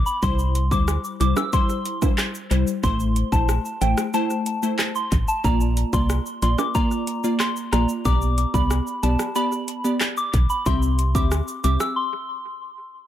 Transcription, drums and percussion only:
0.06 shaker medium
0.23 kick loud
0.23 shaker medium
0.39 shaker medium
0.55 closed hi-hat medium
0.55 shaker medium
0.71 kick medium
0.71 shaker medium
0.88 cross-stick loud
0.88 shaker medium
1.04 shaker medium
1.04 shaker soft
1.20 closed hi-hat medium
1.20 shaker medium
1.36 cross-stick loud
1.36 high timbale medium
1.36 shaker medium
1.53 kick medium
1.53 shaker medium
1.69 shaker soft
1.69 shaker medium
1.85 closed hi-hat medium
1.85 shaker medium
2.02 kick loud
2.02 high timbale medium
2.02 shaker medium
2.18 cross-stick loud
2.18 clap loud
2.18 shaker medium
2.34 shaker medium
2.51 closed hi-hat medium
2.51 shaker medium
2.67 shaker medium
2.84 kick loud
2.84 shaker medium
3.00 shaker medium
3.00 shaker soft
3.16 closed hi-hat medium
3.16 shaker medium
3.32 kick medium
3.32 shaker medium
3.49 cross-stick loud
3.49 shaker medium
3.65 shaker medium
3.65 shaker soft
3.81 closed hi-hat medium
3.81 shaker medium
3.97 cross-stick loud
3.97 shaker medium
4.14 shaker medium
4.30 shaker soft
4.30 shaker medium
4.46 closed hi-hat medium
4.46 shaker medium
4.63 shaker medium
4.79 cross-stick loud
4.79 clap loud
4.79 shaker medium
4.95 shaker medium
5.12 kick medium
5.12 closed hi-hat medium
5.12 shaker soft
5.12 shaker medium
5.28 shaker medium
5.44 kick loud
5.44 shaker medium
5.61 shaker medium
5.77 closed hi-hat medium
5.77 shaker medium
5.93 kick loud
5.93 shaker medium
6.10 cross-stick loud
6.10 shaker medium
6.26 shaker medium
6.26 shaker soft
6.42 closed hi-hat medium
6.42 shaker medium
6.58 cross-stick medium
6.58 high timbale medium
6.58 shaker medium
6.75 kick medium
6.75 shaker medium
6.91 shaker medium
7.07 closed hi-hat medium
7.07 shaker medium
7.24 shaker medium
7.40 cross-stick loud
7.40 clap medium
7.40 shaker medium
7.56 shaker medium
7.73 cross-stick loud
7.73 closed hi-hat medium
7.73 shaker medium
7.73 shaker soft
7.89 shaker medium
8.05 kick loud
8.05 shaker medium
8.21 shaker medium
8.38 closed hi-hat medium
8.38 shaker medium
8.54 kick loud
8.54 shaker medium
8.71 cross-stick loud
8.71 shaker medium
8.87 shaker medium
8.87 shaker soft
9.03 closed hi-hat medium
9.03 shaker medium
9.19 cross-stick loud
9.19 shaker medium
9.36 shaker medium
9.52 shaker medium
9.68 closed hi-hat medium
9.68 shaker medium
9.85 shaker medium
10.01 cross-stick loud
10.01 clap loud
10.01 shaker medium
10.17 shaker medium
10.34 kick medium
10.34 closed hi-hat medium
10.34 shaker soft
10.34 shaker medium
10.50 shaker medium
10.66 kick loud
10.66 shaker medium
10.82 shaker soft
10.82 shaker medium
10.99 closed hi-hat medium
10.99 shaker medium
11.15 kick loud
11.15 shaker medium
11.31 cross-stick loud
11.31 shaker medium
11.48 shaker medium
11.48 shaker soft
11.64 closed hi-hat medium
11.64 shaker medium
11.80 cross-stick loud
11.80 shaker medium

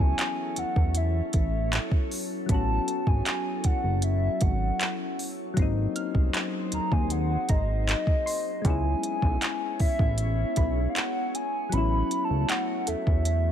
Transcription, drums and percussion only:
0.19 clap loud
0.19 closed hi-hat medium
0.56 closed hi-hat medium
0.76 kick loud
0.95 closed hi-hat medium
1.33 kick medium
1.33 closed hi-hat medium
1.73 clap loud
1.73 closed hi-hat medium
1.91 kick loud
2.11 open hi-hat medium
2.49 kick loud
2.49 closed hi-hat medium
2.88 closed hi-hat medium
3.07 kick medium
3.26 clap loud
3.26 closed hi-hat medium
3.64 kick medium
3.64 closed hi-hat medium
4.02 closed hi-hat medium
4.41 kick medium
4.41 closed hi-hat medium
4.81 clap loud
4.81 closed hi-hat medium
5.19 open hi-hat medium
5.57 kick loud
5.57 closed hi-hat medium
5.96 closed hi-hat medium
6.15 kick medium
6.34 clap loud
6.34 closed hi-hat medium
6.72 closed hi-hat medium
6.92 kick loud
7.10 closed hi-hat medium
7.49 kick medium
7.49 closed hi-hat medium
7.89 clap loud
7.89 closed hi-hat medium
8.07 kick loud
8.27 open hi-hat medium
8.65 kick loud
8.65 closed hi-hat medium
9.03 closed hi-hat medium
9.22 kick medium
9.42 clap loud
9.42 closed hi-hat medium
9.80 kick medium
9.80 open hi-hat medium
9.99 kick loud
10.18 closed hi-hat medium
10.56 kick medium
10.56 closed hi-hat medium
10.96 clap loud
10.96 closed hi-hat medium
11.35 closed hi-hat medium
11.72 closed hi-hat medium
12.11 closed hi-hat medium
12.49 clap loud
12.49 closed hi-hat medium
12.87 closed hi-hat medium
13.07 kick loud
13.25 closed hi-hat medium

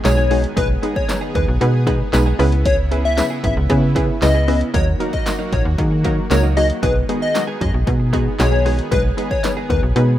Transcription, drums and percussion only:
0.05 snare loud
0.05 clap loud
0.05 closed hi-hat loud
0.05 tambourine medium
0.31 open hi-hat medium
0.44 closed hi-hat medium
0.57 kick loud
0.57 closed hi-hat loud
0.83 closed hi-hat medium
0.96 kick medium
1.09 snare loud
1.09 clap loud
1.09 closed hi-hat loud
1.09 tambourine loud
1.35 kick medium
1.35 closed hi-hat medium
1.61 closed hi-hat medium
1.87 kick medium
1.87 closed hi-hat medium
2.13 snare loud
2.13 clap loud
2.13 closed hi-hat loud
2.13 tambourine medium
2.40 open hi-hat medium
2.52 closed hi-hat medium
2.66 kick loud
2.66 closed hi-hat loud
2.92 closed hi-hat medium
3.18 snare loud
3.18 clap loud
3.18 closed hi-hat loud
3.18 tambourine medium
3.44 kick loud
3.44 closed hi-hat medium
3.70 kick loud
3.70 closed hi-hat medium
3.96 kick medium
3.96 closed hi-hat medium
4.22 snare loud
4.22 clap loud
4.22 closed hi-hat loud
4.22 tambourine medium
4.48 open hi-hat medium
4.61 closed hi-hat medium
4.74 kick loud
4.74 closed hi-hat loud
5.00 closed hi-hat medium
5.13 kick medium
5.13 closed hi-hat medium
5.26 snare loud
5.26 clap loud
5.26 closed hi-hat loud
5.26 tambourine medium
5.53 kick medium
5.53 closed hi-hat medium
5.78 kick loud
5.78 closed hi-hat medium
6.05 kick medium
6.05 closed hi-hat medium
6.31 snare loud
6.31 clap loud
6.31 closed hi-hat loud
6.31 tambourine medium
6.57 open hi-hat medium
6.70 closed hi-hat medium
6.83 kick loud
6.83 closed hi-hat loud
7.09 closed hi-hat medium
7.35 snare loud
7.35 clap loud
7.35 closed hi-hat loud
7.35 tambourine loud
7.61 kick medium
7.61 closed hi-hat medium
7.87 kick loud
7.87 closed hi-hat medium
8.13 kick medium
8.13 closed hi-hat medium
8.39 snare loud
8.39 clap loud
8.39 closed hi-hat loud
8.39 tambourine medium
8.66 open hi-hat medium
8.79 closed hi-hat medium
8.92 kick loud
8.92 closed hi-hat loud
9.18 closed hi-hat medium
9.31 kick medium
9.44 snare loud
9.44 clap loud
9.44 closed hi-hat loud
9.44 tambourine medium
9.70 kick loud
9.70 closed hi-hat medium
9.96 closed hi-hat medium

